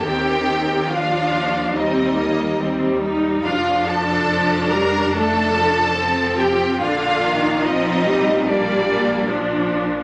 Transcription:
<<
  \new Staff \with { instrumentName = "Violin section" } { \time 4/4 \key bes \major \tempo 4 = 71 g''4 f''4 ees''4. r8 | f''8 a''4 bes''8 a''4. g''8 | f''4 ees''4 d''4. r8 | }
  \new Staff \with { instrumentName = "Violin section" } { \time 4/4 \key bes \major g'4 f'4 ees'4. r8 | f'8 a'4 bes'8 a'4. g'8 | f'4 ees'4 d'4. r8 | }
  \new Staff \with { instrumentName = "Viola section" } { \clef bass \time 4/4 \key bes \major << { c'4 d'4 c'8 bes8 c'8 ees'8 | d'2. c'4 | d'4 c'4 bes8 bes8 d'4 | } \\ { ees4 f4 g4 g4 | f4 f8 g8 a8 f8 f4 | d8 ees8 f8 g8 g4 f4 | } >> }
  \new Staff \with { instrumentName = "Cello section" } { \clef bass \time 4/4 \key bes \major ees,1 | f,1 | bes,1 | }
  \new Staff \with { instrumentName = "Double bass section" } { \clef bass \time 4/4 \key bes \major ees,1 | f,,1 | bes,,1 | }
>>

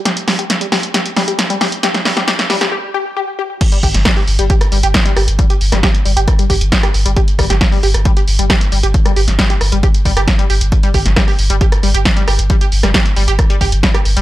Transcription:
<<
  \new Staff \with { instrumentName = "Synth arpeggio sound" } { \time 4/4 \key c \minor \tempo 4 = 135 g'16 r16 g16 g'16 r16 g16 g'16 r16 g'16 r16 g16 g'16 r16 g16 g'16 r16 | g'16 r16 g16 g'16 g'16 r16 g16 g'16 g'16 r16 g'16 r16 g'16 r16 g'16 r16 | r16 g16 g'16 r16 g16 g'16 r16 g16 g'16 r16 g16 g'16 r16 g16 g'16 r16 | g16 g'16 r16 g16 g'16 r16 g16 g'16 r16 g16 g'16 r16 g16 g'16 r16 g16 |
g'16 r16 g16 g'16 r16 g16 g'16 r16 g16 g'16 r16 g16 g'16 r16 g16 g'16 | r16 g16 g'16 r16 g16 g'16 r16 g16 g'16 r16 g16 g'16 r16 g16 g'16 r16 | r16 g16 g'16 r16 g16 g'16 r16 g16 g'16 r16 g16 g'16 r16 g16 g'16 r16 | g16 g'16 r16 g16 g'16 r16 g16 g'16 r16 g16 g'16 r16 g16 g'16 r16 g16 | }
  \new Staff \with { instrumentName = "Sub bass" } { \clef bass \time 4/4 \key c \minor r1 | r1 | r8 g,,16 g,,16 r8 g,,16 g,,16 r8 g,,16 g,,16 r8 g,,16 g,,16 | r8 g,,16 g,,16 r8 g,,16 g,,16 r8 g,,16 g,,16 r8 g,,16 g,,16 |
r8 g,,16 g,,16 r8 g,,16 g,,16 r8 g,,16 g,,16 r8 g,,16 g,,16 | r8 g,,16 g,,16 r8 g,,16 g,,16 r8 g,,16 g,,16 r8 g,,16 g,,16 | r8 g,,16 g,,16 r8 g,,16 g,,16 r8 g,,16 g,,16 r8 g,,16 g,,16 | r8 g,,16 g,,16 r8 g,,16 g,,16 r8 g,,16 g,,16 r8 g,,16 g,,16 | }
  \new DrumStaff \with { instrumentName = "Drums" } \drummode { \time 4/4 <hh sn>16 hh16 <hho sn>16 hh16 <hh sn>16 hh16 <hho sn>16 hh16 <hh sn>16 hh16 <hho sn>16 hh16 <hh sn>16 hh16 <hho sn>16 hh16 | <hh sn>16 <hh sn>16 <hho sn>16 <hh sn>16 <hh sn>16 <hh sn>16 <hho sn>16 <hh sn>16 r4 r4 | <cymc hh bd>16 hh16 <hho bd>16 <hh sn>16 <hh bd ss sn>16 hho16 hho16 hh16 <hh bd>16 <hh ss>16 hho16 hh16 <hh bd sn>16 hh16 <hho ss>16 hh16 | <hh bd>16 hh16 hho16 <hh ss sn>16 <hh bd sn>16 hh16 hho16 hh16 <hh bd ss>16 hh16 <hho bd>16 hh16 <hh bd sn>16 <hh ss>16 hho16 hh16 |
<hh bd>16 hh16 <hho bd ss>16 <hh sn>16 <hh bd sn>16 hho16 hho16 <hh ss>16 <hh bd>16 hh16 hho16 hh16 <hh bd ss sn>16 hh16 hho16 hh16 | <hh bd>16 <hh ss>16 hho16 <hh sn>16 <hh bd sn>16 hh16 <hho ss>16 hh16 <hh bd>16 hh16 <hho bd>16 <hh ss>16 <hh bd sn>16 hh16 hho16 hh16 | <hh bd>16 hh16 <hho bd>16 <hh sn>16 <hh bd ss sn>16 hho16 hho16 hh16 <hh bd>16 <hh ss>16 hho16 hh16 <hh bd sn>16 hh16 <hho ss>16 hh16 | <hh bd>16 hh16 hho16 <hh ss sn>16 <hh bd sn>16 hh16 hho16 hh16 <hh bd ss>16 hh16 <hho bd>16 hh16 <hh bd sn>16 <hh ss>16 hho16 hh16 | }
>>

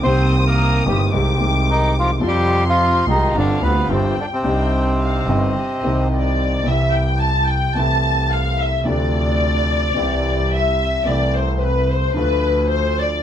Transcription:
<<
  \new Staff \with { instrumentName = "Violin section" } { \time 4/4 \key c \minor \tempo 4 = 109 << { ees'''2 d'''2 | c'''2 f''4 g''4 | g''4 f''8 ees''2 r8 | \key c \major r1 |
r1 | r1 | } \\ { r1 | r1 | r2. d''4 | e''8 g''8 a''8 g''8 a''4 f''8 e''8 |
d''2. e''4 | d''8 c''16. c''32 b'8 c''8 b'4 c''8 d''8 | } >> }
  \new Staff \with { instrumentName = "Bandoneon" } { \time 4/4 \key c \minor c''8~ c''32 c''32 bes'8. g'8 r4 ees'8 f'8 | g'8. f'8. ees'8 d'8 b8 c'8 d'16 c'16~ | c'2. r4 | \key c \major r1 |
r1 | r1 | }
  \new Staff \with { instrumentName = "Bandoneon" } { \clef bass \time 4/4 \key c \minor c'8 r16 bes8. g8 r4 ees8 f8 | g8. f8. ees8 d8 b'8 c8 d16 c16~ | c2. r4 | \key c \major r1 |
r1 | r1 | }
  \new Staff \with { instrumentName = "Grand piano" } { \clef bass \time 4/4 \key c \minor <c, c ees bes c' g'>4. <g,, g, ees bes c' g'>8 <c, c ees aes c' g'>8 <c, c ees aes c' g'>4. | <f, c f c' f'>4. <c, c f aes f'>8 <g,, g, d g c' f'>8 <d, d g c' f'>8 <g,, g, d g b f'>8 r8 | <c, c g c' d' ees'>4. <g,, g, d g c' ees'>8 r8 <c, c ees g c' ees'>4. | \key c \major <c, c e g e'>2 <c, c e a e'>2 |
<d, c d f a d'>2 <c, c e g e'>2 | <c, c e a e'>2 <d, d f a f'>2 | }
  \new Staff \with { instrumentName = "Double bass" } { \clef bass \time 4/4 \key c \minor c,4. g,,8 c,8 c,4. | f,4. c,8 g,,8 d,8 g,,8 r8 | c,4. g,,8 r8 c,4. | \key c \major c,2 c,2 |
d,2 c,2 | c,2 d,2 | }
>>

